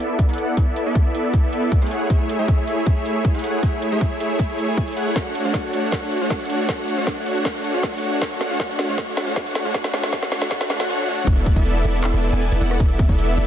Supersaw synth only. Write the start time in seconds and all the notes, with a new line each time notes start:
Already playing: B3 E4 A4 D5 E5
0.29 B3 E4 A4 D5 F#5
0.57 B3 E4 A4 D5 E5
0.86 B3 E4 A4 D5 E5
1.15 B3 E4 A4 D5 E5
1.44 B3 E4 A4 D5 E5
1.82 A3 E4 G#4 C#5 F#5
2.10 A3 E4 G#4 C#5 E5
2.39 A3 E4 G#4 C#5 E5
2.67 A3 E4 G#4 C#5 E5
2.96 A3 E4 G#4 C#5 E5
3.34 A3 E4 G#4 C#5 F#5
3.63 A3 E4 G#4 C#5 E5
3.92 A3 E4 G#4 C#5 E5
4.20 A3 E4 G#4 C#5 E5
4.49 A3 E4 G#4 C#5 E5
4.68 A3 E4 G#4 C#5 G#5
4.87 A3 E4 G#4 C#5 E5
4.96 A3 E4 G#4 C#5 F#5
5.16 A3 D4 F#4 C#5 F#5
5.45 A3 D4 F#4 C#5 F#5
5.73 A3 D4 F#4 C#5 F#5
5.92 A3 D4 F#4 C#5 F#5
6.21 A3 D4 F#4 C#5 F#5
6.50 A3 D4 F#4 C#5 F#5
6.69 A3 D4 F#4 C#5 F#5
6.98 A3 D4 F#4 C#5 F#5
7.26 A3 D4 F#4 C#5 F#5
7.45 A3 D4 F#4 C#5 F#5
7.74 A3 D4 F#4 C#5 F#5
8.02 A3 D4 F#4 C#5 F#5
8.21 A3 D4 F#4 C#5 F#5
8.50 A3 D4 F#4 C#5 F#5
8.60 A3 D4 F#4 C#5 F#5
8.89 A3 D4 F#4 C#5 F#5
8.98 A3 D4 F#4 C#5 F#5
9.27 A3 D4 F#4 C#5 F#5
9.36 A3 D4 F#4 C#5 F#5
9.65 A3 D4 F#4 C#5 F#5
9.74 A3 D4 F#4 C#5 F#5
9.93 A3 D4 F#4 C#5 F#5
10.12 A3 D4 F#4 C#5 F#5
10.32 A3 D4 F#4 C#5 F#5
10.51 A3 D4 F#4 C#5 F#5
10.70 A3 D4 F#4 C#5 F#5
10.89 A3 D4 F#4 C#5 F#5
11.08 A3 D4 F#4 C#5 F#5
11.27 B3 E4 A4 D5 E5
11.56 B3 E4 A4 D5 E5
11.84 B3 E4 A4 D5 E5
12.13 B3 E4 A4 D5 E5
12.33 B3 E4 A4 D5 G#5
12.52 B3 E4 A4 D5 E5
12.61 B3 E4 A4 D5 F#5
12.80 B3 E4 A4 D5 E5
13.09 B3 E4 A4 D5 E5
13.37 B3 E4 A4 D5 E5